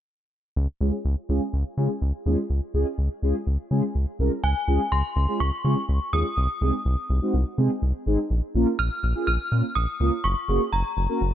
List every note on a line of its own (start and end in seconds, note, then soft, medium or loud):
0.56 0.67 C#2 loud
0.81 0.91 C#2 loud
0.81 0.93 G#3 medium
0.81 0.93 C#4 medium
0.81 0.93 F4 medium
0.81 0.93 G#4 loud
1.05 1.15 C#2 loud
1.29 1.40 C#2 medium
1.29 1.41 G#3 medium
1.29 1.41 C#4 medium
1.29 1.41 F4 medium
1.29 1.41 G#4 medium
1.53 1.64 C#2 medium
1.77 1.88 C#3 medium
1.77 1.90 G#3 medium
1.77 1.90 C#4 medium
1.77 1.90 F4 medium
1.77 1.90 G#4 medium
2.02 2.12 C#2 medium
2.26 2.36 D#2 medium
2.26 2.38 G#3 medium
2.26 2.38 C#4 medium
2.26 2.38 F4 medium
2.26 2.38 G#4 medium
2.50 2.61 C#2 loud
2.74 2.85 C#2 medium
2.74 2.86 G#3 medium
2.74 2.87 C#4 medium
2.74 2.86 F4 medium
2.74 2.87 G#4 medium
2.98 3.09 C#2 loud
3.22 3.33 C#2 medium
3.22 3.35 G#3 medium
3.22 3.35 C#4 medium
3.22 3.35 F4 medium
3.22 3.35 G#4 medium
3.47 3.57 C#2 loud
3.71 3.81 C#3 loud
3.71 3.83 G#3 medium
3.71 3.83 C#4 medium
3.71 3.83 F4 medium
3.71 3.83 G#4 medium
3.95 4.06 C#2 medium
4.19 4.30 C2 medium
4.19 4.32 G#3 medium
4.19 4.32 C#4 medium
4.19 4.32 F4 medium
4.19 4.32 A#4 medium
4.43 4.54 C#2 loud
4.43 4.93 G#5 medium
4.68 4.78 C#2 medium
4.68 4.80 G#3 medium
4.68 4.80 C#4 medium
4.68 4.80 F4 medium
4.68 4.80 G#4 medium
4.92 5.02 C#2 medium
4.92 5.42 C6 medium
5.16 5.27 C#2 loud
5.16 5.22 F4 medium
5.16 5.22 G#4 medium
5.28 5.41 G#3 medium
5.28 5.41 C#4 medium
5.28 5.41 F4 medium
5.28 5.41 G#4 medium
5.40 5.51 C#2 loud
5.40 6.15 C#6 loud
5.64 5.75 C#3 loud
5.64 5.77 G#3 medium
5.64 5.77 C#4 medium
5.64 5.77 F4 medium
5.64 5.77 G#4 medium
5.89 5.99 C#2 loud
6.13 6.24 D#2 medium
6.13 6.25 G#3 medium
6.13 6.25 C#4 medium
6.13 6.25 F4 medium
6.13 6.25 G#4 medium
6.13 7.06 D#6 medium
6.37 6.48 C2 loud
6.61 6.72 C2 loud
6.61 6.74 G#3 medium
6.61 6.74 C4 medium
6.61 6.74 D#4 medium
6.61 6.74 G#4 medium
6.85 6.96 C2 loud
7.10 7.20 C2 loud
7.10 7.16 D#4 medium
7.10 7.16 G#4 loud
7.22 7.34 G#3 medium
7.22 7.34 C4 medium
7.22 7.34 D#4 medium
7.22 7.34 F#4 medium
7.34 7.44 C2 loud
7.58 7.69 C3 loud
7.58 7.70 G#3 medium
7.58 7.70 C4 medium
7.58 7.70 D#4 medium
7.58 7.70 G#4 loud
7.82 7.93 C2 medium
8.06 8.17 G#1 medium
8.06 8.19 G#3 medium
8.06 8.19 C4 medium
8.06 8.19 D#4 medium
8.06 8.19 G#4 loud
8.30 8.41 A#1 loud
8.55 8.65 A#1 loud
8.55 8.67 A#3 medium
8.55 8.67 C#4 medium
8.55 8.67 F4 medium
8.55 8.67 A#4 loud
8.79 8.90 A#1 loud
8.79 9.26 F6 loud
9.03 9.14 A#1 loud
9.03 9.10 F4 medium
9.03 9.10 A#4 medium
9.15 9.28 A#3 medium
9.15 9.28 C#4 medium
9.15 9.28 F4 medium
9.15 9.28 G#4 medium
9.27 9.38 A#1 loud
9.27 9.77 F6 loud
9.51 9.62 A#2 loud
9.51 9.64 A#3 medium
9.51 9.64 C#4 medium
9.51 9.64 F4 medium
9.51 9.64 A#4 medium
9.75 9.86 A#1 loud
9.75 10.21 D#6 loud
10.00 10.11 C#2 medium
10.00 10.12 A#3 medium
10.00 10.12 C#4 medium
10.00 10.12 F4 medium
10.00 10.12 A#4 medium
10.24 10.35 F#1 loud
10.24 10.74 C#6 loud
10.48 10.59 F#1 loud
10.48 10.61 A#3 medium
10.48 10.61 C#4 medium
10.48 10.61 F#4 medium
10.48 10.61 G#4 medium
10.73 10.83 F#1 loud
10.73 11.34 A#5 medium
10.97 11.07 F#1 loud
10.97 11.03 F#4 medium
10.97 11.03 G#4 medium
11.09 11.21 A#3 medium
11.09 11.21 C#4 medium
11.09 11.21 F#4 medium
11.09 11.21 A#4 medium
11.21 11.32 F#1 loud